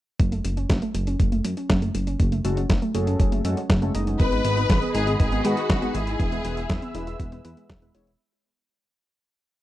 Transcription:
0.19 F#1 F#3, kick, closed hi-hat
0.32 A3, closed hi-hat
0.44 F#1 F#3, closed hi-hat
0.57 C#4, closed hi-hat
0.70 F#1 F#3, kick, snare, closed hi-hat
0.82 A3, closed hi-hat
0.95 F#1 F#3, closed hi-hat
1.07 C#4, closed hi-hat
1.20 F#1 F#3, kick, closed hi-hat
1.32 A3, closed hi-hat
1.45 F#2 F#3, closed hi-hat
1.57 C#4, closed hi-hat
1.70 F#1 F#3, kick, snare, closed hi-hat
1.82 A3, closed hi-hat
1.95 F#1 F#3, closed hi-hat
2.07 C#4, closed hi-hat
2.20 F#1 F#3, kick, closed hi-hat
2.32 A3, closed hi-hat
2.45 F#1 F#3 G#3 C#4 F#4 A4, closed hi-hat
2.57 C#4, closed hi-hat
2.70 F#1 F#3, kick, snare, closed hi-hat
2.82 A3, closed hi-hat
2.95 F#1 F#3 C#4 F#4 G#4 A4, closed hi-hat
3.07 C#4, closed hi-hat
3.20 F#1 F#3, kick, closed hi-hat
3.32 A3, closed hi-hat
3.45 F#2 F#3 G#3 C#4 F#4 A4, closed hi-hat
3.57 C#4, closed hi-hat
3.70 F#1 F#3, kick, snare, closed hi-hat
3.82 G#3 A3 C#4 F#4 A4, closed hi-hat
3.94 F#1 F#3 G#3 B3 D#4 D#5, closed hi-hat
4.07 C#4, closed hi-hat
4.20 G#1 D#3 G#4 B4 D#5 B5 D#6, kick, closed hi-hat
4.32 B3, closed hi-hat
4.45 G#1 D#3 G#3 B3 D#4 B4, closed hi-hat
4.57 D#4, closed hi-hat
4.70 G#1 D#3, kick, snare, closed hi-hat
4.82 B3, closed hi-hat
4.95 G#1 D#3 G#3 B3 D#4 G#4 B4, closed hi-hat
5.07 D#4, closed hi-hat
5.20 G#1 D#3 G#4, kick, closed hi-hat
5.32 B3, closed hi-hat
5.45 G#2 D#3 G#3 B3 D#4 F#4 B4, closed hi-hat
5.57 D#4, closed hi-hat
5.70 G#1 D#3, kick, snare, closed hi-hat
5.82 G#3 B3 D#4 B4, closed hi-hat
5.95 G#1 D#3 G#3 B3 E4 G#4 E5, closed hi-hat
6.07 D#4, closed hi-hat
6.19 E1 E3 E5 E6, kick, closed hi-hat
6.32 B3, closed hi-hat
6.45 E1 E3 G#3 B3 E4 B4, closed hi-hat
6.57 E4, closed hi-hat
6.70 E1 E3, kick, snare, closed hi-hat
6.82 B3, closed hi-hat
6.95 E1 E3 G#3 B3 E4 B4, closed hi-hat
7.07 E4, closed hi-hat
7.20 E1 E3, kick, closed hi-hat
7.32 B3, closed hi-hat
7.45 E2 E3 G#3 B3 E4 B4, closed hi-hat
7.57 G#3, closed hi-hat
7.70 E1 E4, kick, snare, closed hi-hat
7.82 G#3 B3 E4 B4, closed hi-hat
7.95 E1 G#3 B3 E4 C#5, closed hi-hat
8.07 B3, closed hi-hat

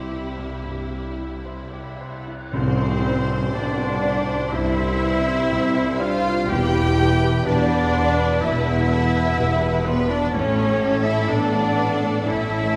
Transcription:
Already playing: C2 G2 C3 G3 E4 G4 B4 C5
0.11 E4
0.37 C2
0.64 G2
0.91 G3
1.18 E4
1.45 C5
1.73 G4
2.01 C5
2.28 E4
2.52 C2 C3 G3 C4 C5, tam-tam
2.79 C5
3.04 B4 C5
3.29 C5
3.52 C2 B2 G3 D4 D5
3.78 C5
4.03 C5 D5
4.29 C5
4.52 C2 G2 C4 E4 E5
4.77 C5
5.02 B4 C5
5.27 C5
5.51 C2 G3
5.75 C5
5.98 D4 F4 C5 D5 F5
6.25 C5
6.48 E1 E2 E4 G4 B4 G5
6.74 B4
6.98 A4 B4
7.22 B4
7.46 E1 E2 G3 B3 D4 D5
7.70 B4
7.94 B4 C5
8.19 B4
8.42 E1 E2 B2 B3 E4 E5
8.67 B4
8.91 A4 B4
9.16 B4
9.38 E1 E2 G3
9.62 B4
9.85 G3 B3 B4 C5
10.09 B3 D4 B4 D5
10.33 A1 A2 A3 C#4 C#5
10.58 A4
10.80 G4 A4
11.03 C#4 E4 A4 E5
11.29 A1 A2 A3 B3 D4 D5
11.53 A4
11.77 A4 B4
12.02 A4
12.25 A1 A2 E3 C#4 E4 E5
12.51 A4

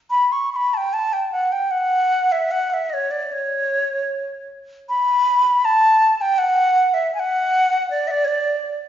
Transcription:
0.11 B5
0.32 C#6
0.52 B5 C#6
0.74 G5 A5
0.93 A5
1.13 G5
1.32 F#5
1.52 G5
1.71 F#5
2.32 E5
2.51 F#5
2.70 E5 F#5
2.90 C#5 D#5
3.11 D5
3.32 C#5
4.89 B5
5.65 A5
6.21 G5
6.38 F#5
6.94 E5
7.15 G#5
7.20 F#5
7.91 D5
8.08 D5 E5
8.25 C#5 D5

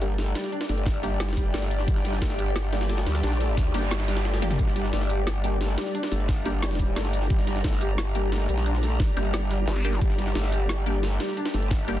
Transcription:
Already playing: G1 G4 D5 G5
0.01 G3 A#3 D4 G4, closed hi-hat
0.18 A3, snare, closed hi-hat
0.35 G3, snare, closed hi-hat
0.44 snare
0.52 D4, closed hi-hat
0.61 snare, closed hi-hat
0.69 G1 A3, snare, closed hi-hat
0.78 closed hi-hat
0.86 kick, snare, closed hi-hat
1.03 G3 A#3 D4 G4, snare, closed hi-hat
1.20 snare, closed hi-hat
1.28 F#1, snare, closed hi-hat
1.33 snare, closed hi-hat
1.37 G3, kick, snare, closed hi-hat
1.54 G1 A3, snare, closed hi-hat
1.62 snare
1.71 closed hi-hat
1.79 snare
1.88 G1 G3, kick, closed hi-hat
1.96 snare
2.05 G3, snare, closed hi-hat
2.13 snare
2.22 G1 A3, kick, snare, closed hi-hat
2.30 snare
2.39 G4, closed hi-hat
2.56 snare, closed hi-hat
2.73 G3 A#3 D4 G4, snare, closed hi-hat
2.81 snare, closed hi-hat
2.90 A3, snare, closed hi-hat
2.98 snare, closed hi-hat
3.06 D2 G3, snare, closed hi-hat
3.15 snare, closed hi-hat
3.23 A#1 D4, snare, closed hi-hat, noise sweep
3.32 snare
3.40 A3, snare, closed hi-hat
3.57 D2, kick, snare, closed hi-hat
3.74 G1 G3 A#3 D4 G4, snare, closed hi-hat
3.83 snare
3.91 G3, snare, closed hi-hat
4.00 snare, closed hi-hat
4.08 G3, snare, closed hi-hat
4.17 snare, closed hi-hat
4.25 A3, snare, closed hi-hat
4.34 snare, closed hi-hat
4.42 A#3 D4 G4, snare, closed hi-hat, high tom
4.51 A#3 D4 G4, snare, closed hi-hat, mid tom
4.59 G1 G3, kick, closed hi-hat
4.68 snare
4.76 G3, snare, closed hi-hat
4.84 snare
4.93 G1 A3, snare, closed hi-hat
5.01 snare
5.06 G4 A#5, closed hi-hat
5.27 snare, closed hi-hat
5.44 G3 A#3 D4 G4, closed hi-hat
5.61 A3, snare, closed hi-hat
5.78 G3, snare, closed hi-hat
5.86 snare
5.95 D4, closed hi-hat
6.03 snare, closed hi-hat
6.12 G1 A3, snare, closed hi-hat
6.20 closed hi-hat
6.29 kick, snare, closed hi-hat
6.46 G3 A#3 D4 G4, snare, closed hi-hat
6.62 G3, snare, closed hi-hat
6.71 snare, closed hi-hat
6.75 snare, closed hi-hat
6.79 G3, kick, snare, closed hi-hat
6.96 G1 A3, snare, closed hi-hat
7.05 snare
7.13 closed hi-hat
7.22 snare
7.30 G1 G3, kick, closed hi-hat
7.39 snare
7.47 G3, snare, closed hi-hat
7.56 snare
7.64 G1 A3, kick, snare, closed hi-hat
7.73 snare
7.81 G4, closed hi-hat
7.98 snare, closed hi-hat
8.15 G3 A#3 D4 G4, closed hi-hat
8.32 A3, snare, closed hi-hat
8.49 A#1 G3, closed hi-hat
8.57 snare
8.66 D4, closed hi-hat
8.74 snare
8.83 A3, snare, closed hi-hat
9.00 kick, snare, closed hi-hat
9.17 G1 G3 A#3 D4 G4, snare, closed hi-hat
9.34 G3, snare, closed hi-hat
9.51 G3, snare, closed hi-hat
9.68 G1 G3, snare, closed hi-hat
9.76 snare
9.85 A#3 D4 G4, closed hi-hat
9.93 snare
10.01 G1 G3, kick, closed hi-hat
10.10 snare
10.18 G3, snare, closed hi-hat
10.27 snare
10.35 G1 A3, snare, closed hi-hat
10.44 snare
10.49 G4 G5, closed hi-hat
10.69 snare, closed hi-hat
10.86 G3 A#3 D4 G4, closed hi-hat
11.03 A3, snare, closed hi-hat
11.20 G3, snare, closed hi-hat
11.29 snare
11.37 D4, closed hi-hat
11.45 snare, closed hi-hat
11.54 G1 A3, snare, closed hi-hat
11.62 closed hi-hat
11.71 kick, snare, closed hi-hat
11.88 G3 A#3 D4 G4, snare, closed hi-hat

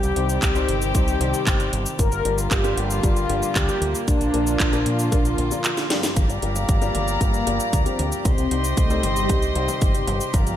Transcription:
Already playing: D#3 G3 C4 G4
0.03 C2, closed hi-hat, cabasa
0.16 C2 C3 G3 C4 D#4 C5, closed hi-hat
0.29 closed hi-hat, cabasa
0.42 C2 G4, kick, clap, closed hi-hat, cabasa
0.55 C3 G3 C4 D#4 C5, closed hi-hat, cabasa
0.68 G1, closed hi-hat
0.82 closed hi-hat, cabasa
0.95 C2 C3 G3 C4 D#4 G4 C5, kick, closed hi-hat, cabasa
1.08 closed hi-hat, cabasa
1.20 C2 C3 G3 C4 D#4 C5, closed hi-hat
1.34 closed hi-hat, cabasa
1.47 G1, kick, clap, closed hi-hat, cabasa
1.60 C3 G3 C4 D#4 C5, closed hi-hat, cabasa
1.73 G1, closed hi-hat
1.86 closed hi-hat, cabasa
1.99 G1 D3 G3 A#3 F4 A#4, kick, closed hi-hat, cabasa
2.12 G1, closed hi-hat, cabasa
2.25 G1 G2 F3 A#3 D4 G4, closed hi-hat
2.38 closed hi-hat, cabasa
2.51 G1 G4, kick, clap, closed hi-hat, cabasa
2.64 G2 F3 A#3 D4 G4, closed hi-hat, cabasa
2.77 G1, closed hi-hat
2.90 closed hi-hat, cabasa
3.03 G2 F3 A#3 D4 F4 G4, kick, closed hi-hat, cabasa
3.17 closed hi-hat, cabasa
3.29 G1 G2 F3 A#3 D4 G4, closed hi-hat
3.43 closed hi-hat, cabasa
3.56 D2 G4, kick, clap, closed hi-hat, cabasa
3.69 G2 F3 A#3 D4 G4, closed hi-hat, cabasa
3.81 D2, closed hi-hat
3.95 closed hi-hat, cabasa
4.08 A#1 D3 F3 D4 F4, kick, closed hi-hat, cabasa
4.21 A#1, closed hi-hat, cabasa
4.34 A#1 A#2 F3 A#3 D4 A#4, closed hi-hat
4.47 closed hi-hat, cabasa
4.60 A#1, kick, clap, closed hi-hat, cabasa
4.73 A#2 F3 A#3 D4 A#4, closed hi-hat, cabasa
4.86 A#2, closed hi-hat
4.99 closed hi-hat, cabasa
5.12 A#1 A#2 F3 A#3 D4 A#4, kick, closed hi-hat, cabasa
5.25 closed hi-hat, cabasa
5.38 A#1, closed hi-hat
5.51 A#2 F3 A#3 D4 A#4, closed hi-hat, cabasa
5.64 clap, closed hi-hat, cabasa
5.77 snare, closed hi-hat, cabasa
5.90 G2 F3 A#3 D4 G4, snare, closed hi-hat
6.03 snare, closed hi-hat, cabasa
6.16 G1 F3 F4 G4 D5 F5 A#5, kick, closed hi-hat, mid tom, cabasa
6.29 G1, closed hi-hat, cabasa
6.42 G1 G2 F3 A#3 D4 G4, closed hi-hat
6.56 closed hi-hat, mid tom, cabasa
6.69 G1 A#3 A#4, kick, closed hi-hat, cabasa
6.82 G2 F3 A#3 D4 G4, closed hi-hat, cabasa
6.95 G1, closed hi-hat, mid tom
7.08 closed hi-hat, cabasa
7.21 G1 G2 F3 A#3 D4 G4 A#4, kick, closed hi-hat, mid tom, cabasa
7.34 closed hi-hat, cabasa
7.47 G1 G2 F3 A#3 D4 G4, closed hi-hat
7.60 closed hi-hat, cabasa
7.73 D2 C4 C5, kick, closed hi-hat, cabasa
7.86 G2 F3 A#3 D4 G4, closed hi-hat, cabasa
7.99 D2, closed hi-hat, mid tom
8.12 closed hi-hat, cabasa
8.25 C2 C4 C5 D#5 C6, kick, closed hi-hat, mid tom, cabasa
8.38 C2, closed hi-hat, cabasa
8.51 C2 C3 G3 C4 D#4 C5, closed hi-hat
8.64 closed hi-hat, cabasa
8.77 C2 A3 A4, kick, closed hi-hat, cabasa
8.90 C3 G3 C4 D#4 C5, closed hi-hat, cabasa
9.03 G1 G3 G4, closed hi-hat, mid tom
9.16 closed hi-hat, cabasa
9.29 C3 G3 C4 D#4 C5, kick, closed hi-hat, mid tom, cabasa
9.42 closed hi-hat, cabasa
9.55 C2 C3 G3 C4 D#4 C5, closed hi-hat
9.68 closed hi-hat, mid tom, cabasa
9.81 G1, kick, closed hi-hat, cabasa
9.95 C3 G3 C4 D#4 C5, closed hi-hat, cabasa
10.07 G1, closed hi-hat, mid tom
10.21 closed hi-hat, cabasa
10.34 G1 F3 F4 D5 F5 A#5, kick, closed hi-hat, mid tom, cabasa
10.47 G1, closed hi-hat, cabasa

